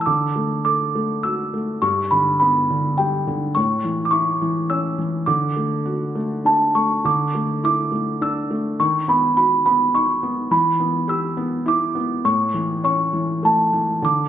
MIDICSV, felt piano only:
0, 0, Header, 1, 2, 480
1, 0, Start_track
1, 0, Key_signature, 2, "major"
1, 0, Tempo, 584226
1, 59, Time_signature, 3, 2, 24, 8
1, 2459, Tempo, 573614
1, 4859, Tempo, 587659
1, 7259, Tempo, 572519
1, 9659, Tempo, 593472
1, 11781, End_track
2, 0, Start_track
2, 0, Title_t, "Felt piano"
2, 0, Program_c, 0, 0
2, 0, Control_c, 0, 64, 127
2, 56, Note_on_c, 0, 50, 53
2, 71, Control_c, 0, 64, 0
2, 202, Control_c, 0, 64, 127
2, 292, Note_on_c, 0, 57, 44
2, 539, Note_on_c, 0, 69, 44
2, 770, Note_off_c, 0, 57, 0
2, 783, Note_on_c, 0, 57, 44
2, 1025, Note_on_c, 0, 66, 44
2, 1250, Note_off_c, 0, 57, 0
2, 1262, Note_on_c, 0, 57, 42
2, 1466, Note_off_c, 0, 50, 0
2, 1470, Note_off_c, 0, 69, 0
2, 1487, Note_off_c, 0, 66, 0
2, 1493, Note_off_c, 0, 57, 0
2, 1496, Note_on_c, 0, 43, 58
2, 1513, Control_c, 0, 64, 0
2, 1635, Control_c, 0, 64, 127
2, 1738, Note_on_c, 0, 50, 43
2, 1981, Note_on_c, 0, 59, 46
2, 2208, Note_off_c, 0, 50, 0
2, 2221, Note_on_c, 0, 50, 44
2, 2455, Note_on_c, 0, 55, 47
2, 2681, Note_off_c, 0, 50, 0
2, 2693, Note_on_c, 0, 50, 47
2, 2902, Note_off_c, 0, 43, 0
2, 2910, Note_off_c, 0, 59, 0
2, 2922, Note_off_c, 0, 55, 0
2, 2928, Note_off_c, 0, 50, 0
2, 2937, Note_on_c, 0, 45, 59
2, 2949, Control_c, 0, 64, 0
2, 3109, Control_c, 0, 64, 127
2, 3172, Note_on_c, 0, 52, 45
2, 3405, Note_on_c, 0, 64, 49
2, 3637, Note_off_c, 0, 52, 0
2, 3650, Note_on_c, 0, 52, 46
2, 3889, Note_on_c, 0, 61, 46
2, 4110, Note_off_c, 0, 52, 0
2, 4123, Note_on_c, 0, 52, 43
2, 4339, Note_off_c, 0, 45, 0
2, 4339, Note_off_c, 0, 64, 0
2, 4357, Note_off_c, 0, 61, 0
2, 4361, Note_off_c, 0, 52, 0
2, 4368, Note_on_c, 0, 50, 58
2, 4386, Control_c, 0, 64, 0
2, 4527, Control_c, 0, 64, 127
2, 4612, Note_on_c, 0, 57, 45
2, 4855, Note_on_c, 0, 66, 46
2, 5086, Note_off_c, 0, 57, 0
2, 5098, Note_on_c, 0, 57, 45
2, 5339, Note_on_c, 0, 62, 42
2, 5573, Note_off_c, 0, 57, 0
2, 5585, Note_on_c, 0, 57, 40
2, 5796, Note_off_c, 0, 50, 0
2, 5800, Note_off_c, 0, 66, 0
2, 5814, Note_off_c, 0, 62, 0
2, 5822, Note_off_c, 0, 57, 0
2, 5828, Note_on_c, 0, 50, 56
2, 5844, Control_c, 0, 64, 0
2, 5996, Control_c, 0, 64, 127
2, 6073, Note_on_c, 0, 57, 45
2, 6308, Note_on_c, 0, 64, 47
2, 6527, Note_off_c, 0, 57, 0
2, 6539, Note_on_c, 0, 57, 42
2, 6782, Note_on_c, 0, 62, 48
2, 7007, Note_off_c, 0, 57, 0
2, 7019, Note_on_c, 0, 57, 46
2, 7224, Note_off_c, 0, 50, 0
2, 7229, Note_off_c, 0, 64, 0
2, 7242, Note_off_c, 0, 62, 0
2, 7250, Note_off_c, 0, 57, 0
2, 7256, Note_on_c, 0, 51, 58
2, 7271, Control_c, 0, 64, 0
2, 7396, Control_c, 0, 64, 127
2, 7495, Note_on_c, 0, 59, 49
2, 7737, Note_on_c, 0, 66, 47
2, 7964, Note_off_c, 0, 59, 0
2, 7977, Note_on_c, 0, 59, 46
2, 8217, Note_on_c, 0, 63, 49
2, 8445, Note_off_c, 0, 59, 0
2, 8458, Note_on_c, 0, 59, 46
2, 8662, Note_off_c, 0, 51, 0
2, 8667, Note_off_c, 0, 66, 0
2, 8682, Note_off_c, 0, 63, 0
2, 8690, Note_off_c, 0, 59, 0
2, 8693, Note_on_c, 0, 52, 62
2, 8708, Control_c, 0, 64, 0
2, 8839, Control_c, 0, 64, 127
2, 8935, Note_on_c, 0, 59, 47
2, 9170, Note_on_c, 0, 67, 49
2, 9402, Note_off_c, 0, 59, 0
2, 9415, Note_on_c, 0, 59, 49
2, 9655, Note_on_c, 0, 64, 51
2, 9880, Note_off_c, 0, 59, 0
2, 9892, Note_on_c, 0, 59, 47
2, 10098, Note_off_c, 0, 52, 0
2, 10101, Note_off_c, 0, 67, 0
2, 10116, Note_off_c, 0, 64, 0
2, 10124, Note_off_c, 0, 59, 0
2, 10132, Note_on_c, 0, 45, 61
2, 10141, Control_c, 0, 64, 0
2, 10308, Control_c, 0, 64, 127
2, 10370, Note_on_c, 0, 52, 52
2, 10609, Note_on_c, 0, 61, 47
2, 10836, Note_off_c, 0, 52, 0
2, 10848, Note_on_c, 0, 52, 46
2, 11088, Note_on_c, 0, 57, 49
2, 11320, Note_off_c, 0, 52, 0
2, 11332, Note_on_c, 0, 52, 46
2, 11545, Note_off_c, 0, 45, 0
2, 11548, Note_off_c, 0, 61, 0
2, 11561, Note_off_c, 0, 57, 0
2, 11569, Note_off_c, 0, 52, 0
2, 11569, Note_on_c, 0, 50, 55
2, 11587, Control_c, 0, 64, 0
2, 11731, Control_c, 0, 64, 127
2, 11781, Note_off_c, 0, 50, 0
2, 11781, End_track
0, 0, End_of_file